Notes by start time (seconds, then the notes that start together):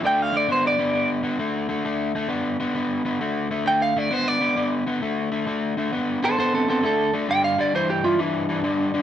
0.03 D3 A3 G5
0.22 F5
0.32 D3 A3
0.37 D5
0.48 D3 B3 C5
0.67 D5
0.78 D3 B3
0.93 D3 B3
1.23 D3 B3
1.39 D3 A3
1.69 D3 A3
1.85 D3 A3
2.15 D3 A3
2.29 D3 B3
2.60 D3 B3
2.75 D3 B3
3.05 D3 B3
3.21 D3 A3
3.51 D3 A3
3.66 D3 A3 G5
3.82 F5
3.96 D3 A3 D5
4.10 D3 B3 C5
4.28 D5
4.41 D3 B3
4.56 D3 B3
4.87 D3 B3
5.02 D3 A3
5.32 D3 A3
5.47 D3 A3
5.77 D3 A3
5.92 D3 B3
6.22 D3 B3 A4 C5
6.38 D3 B3 A4 C5
6.54 C4 A4
6.68 D3 B3 C4 A4
6.83 D3 A3 A4
7.14 D3 A3
7.28 G2 D3 G5
7.44 F5
7.58 G2 D3 D5
7.74 G2 E3 C5
7.90 G4
8.04 G2 E3 F4
8.18 G2 E3 D4
8.49 G2 E3
8.64 G2 D3
8.94 G2 D3